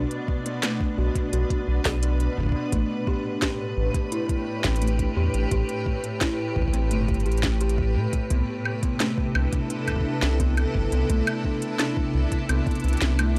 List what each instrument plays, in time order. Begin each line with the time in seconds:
Already playing: ambient pad B2 D4 B4
0.11 closed hi-hat
0.28 kick
0.46 kalimba B3, closed hi-hat
0.63 kalimba A3, snare, closed hi-hat
0.81 kick
0.98 analog synth bass B1, kalimba F#4
1.15 kick, closed hi-hat
1.33 analog synth bass B1, kalimba F#4, closed hi-hat
1.50 kick, closed hi-hat
1.68 analog synth bass B1
1.85 analog synth bass B1, kick, snare, closed hi-hat
2.03 kalimba D4, closed hi-hat
2.20 closed hi-hat
2.37 analog synth bass F#1, kick
2.40 kick
2.43 kick
2.46 kick
2.49 kick
2.52 kalimba B3, kick
2.72 analog synth bass A1, ambient pad A2, kalimba A3, kick, closed hi-hat
3.07 kalimba G4, kick
3.42 kalimba G4, ambient pad G4, kick, snare, closed hi-hat
3.77 analog synth bass A1
3.94 kick, closed hi-hat
4.12 kalimba E4, closed hi-hat
4.29 kick, closed hi-hat
4.64 analog synth bass A1, kalimba C4, kick, snare, closed hi-hat
4.76 closed hi-hat
4.82 kalimba A3, closed hi-hat
4.87 closed hi-hat
4.99 kick, closed hi-hat
5.17 analog synth bass E2, kalimba G4
5.34 analog synth bass A1, closed hi-hat
5.51 analog synth bass A1, kalimba G4, kick, closed hi-hat
5.69 closed hi-hat
5.86 kick
6.04 closed hi-hat
6.21 kalimba E4, kick, snare, closed hi-hat
6.56 analog synth bass A1, kick
6.62 kick
6.68 kick
6.74 kalimba C4, closed hi-hat
6.91 analog synth bass G1, kalimba A3, closed hi-hat
7.08 kick, closed hi-hat
7.14 closed hi-hat
7.20 closed hi-hat
7.26 analog synth bass A1, kalimba G4, closed hi-hat
7.32 closed hi-hat
7.37 closed hi-hat
7.43 kick, snare, closed hi-hat
7.61 kalimba G4, closed hi-hat
7.69 closed hi-hat
7.78 kick
7.96 analog synth bass A2
8.13 kick, closed hi-hat
8.30 analog synth bass C2, ambient pad C3, kalimba B3, kick, closed hi-hat
8.55 ambient pad E4
8.65 ambient pad A4, high woodblock
8.80 kalimba B3, ambient pad D4, kick, closed hi-hat
9.00 kalimba A3, snare, closed hi-hat
9.18 kick
9.35 analog synth bass C2, kalimba D4, high woodblock
9.53 kick, closed hi-hat
9.70 kalimba D4, closed hi-hat
9.88 kick, closed hi-hat, high woodblock
9.92 kick
9.96 kick
10.01 kick
10.22 analog synth bass C2, snare, closed hi-hat
10.40 kalimba B3, kick, closed hi-hat
10.57 closed hi-hat, high woodblock
10.75 analog synth bass G1, kick
10.92 analog synth bass C2, kalimba B3, closed hi-hat
11.10 analog synth bass C2, kalimba A3, kick, closed hi-hat
11.27 closed hi-hat, high woodblock
11.45 kalimba D4, kick
11.62 closed hi-hat
11.79 kalimba D4, snare, closed hi-hat, high woodblock
11.97 kick
12.14 analog synth bass C2
12.32 kick, closed hi-hat
12.49 analog synth bass C2, kalimba B3, closed hi-hat, high woodblock
12.67 kick, closed hi-hat
12.71 closed hi-hat
12.75 closed hi-hat
12.80 closed hi-hat
12.84 analog synth bass C2, closed hi-hat
12.88 closed hi-hat
12.93 closed hi-hat
12.97 closed hi-hat
13.01 analog synth bass C2, kalimba B3, kick, snare, closed hi-hat
13.19 kalimba A3, closed hi-hat, high woodblock